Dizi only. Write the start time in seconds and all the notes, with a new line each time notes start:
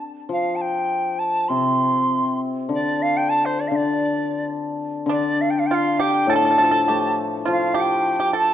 0.32 F5
0.55 A5
0.61 G5
1.19 A5
1.48 C6
2.74 D5
3.02 F5
3.17 G5
3.29 A5
3.45 C5
3.60 D5
3.68 F5
3.75 D5
5.11 D5
5.41 F5
5.50 G5
5.59 F5
5.66 G5
5.74 F5
6.01 G5
6.33 A5
7.52 F5
7.80 G5
8.38 A5